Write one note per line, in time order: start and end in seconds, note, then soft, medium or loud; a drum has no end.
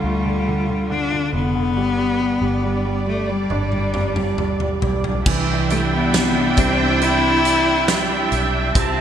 0.00 1.29 D2 medium
0.00 0.26 D3 medium
0.00 1.73 D3 medium
0.00 0.93 G3 medium
0.00 1.73 A3 medium
0.00 1.73 F4 medium
0.05 1.73 A3 medium
0.26 0.46 D3 soft
0.47 0.67 D3 soft
0.69 0.89 D3 soft
0.90 1.11 D3 soft
0.90 1.34 D4 medium
1.12 1.32 D3 soft
1.33 1.76 F1 medium
1.33 1.54 D3 soft
1.33 3.03 B3 medium
1.55 1.76 D3 soft
1.76 2.37 G1 medium
1.76 5.23 G3 medium
1.76 1.97 G3 medium
1.76 5.22 D4 soft
1.76 5.23 D5 medium
1.98 2.19 G3 soft
2.20 2.40 G3 soft
2.41 3.46 G1 medium
2.41 2.62 G3 soft
2.63 2.84 G3 soft
2.85 3.05 G3 soft
3.07 3.27 G3 soft
3.07 3.31 A3 medium
3.29 3.71 G3 soft
3.29 4.83 G3 medium
3.50 4.78 G1 medium
3.50 5.22 D4 medium
3.50 high tom soft
3.72 3.93 G3 soft
3.72 high tom soft
3.94 4.16 G3 soft
3.94 mid tom medium
4.16 4.38 G3 soft
4.16 mid tom medium
4.38 4.59 G3 soft
4.38 mid tom medium
4.60 4.82 G3 soft
4.60 mid tom medium
4.82 5.23 B1 medium
4.82 5.03 G3 soft
4.82 floor tom medium
5.04 5.26 G3 soft
5.04 floor tom medium
5.25 6.54 C2 loud
5.25 8.71 E3 medium
5.25 8.71 D4 medium
5.25 8.72 E4 medium
5.25 9.01 E5 medium
5.25 8.72 G5 medium
5.25 kick loud
5.25 crash loud
5.70 6.57 G3 medium
5.70 5.80 A3 medium
5.70 closed hi-hat medium
5.92 6.60 B3 medium
6.14 7.84 C3 medium
6.14 snare loud
6.14 closed hi-hat medium
6.57 8.28 C2 medium
6.57 7.87 G3 soft
6.57 7.03 C4 medium
6.57 kick medium
6.57 closed hi-hat medium
7.01 8.71 C4 medium
7.01 8.32 E4 loud
7.01 closed hi-hat medium
7.45 closed hi-hat medium
7.88 8.73 G3 medium
7.88 snare loud
7.88 closed hi-hat medium
8.32 8.72 B1 medium
8.32 closed hi-hat medium
8.75 9.01 C2 loud
8.75 9.01 C3 medium
8.75 9.01 C4 loud
8.75 9.01 F4 medium
8.75 9.01 A5 medium
8.75 kick loud
8.75 closed hi-hat medium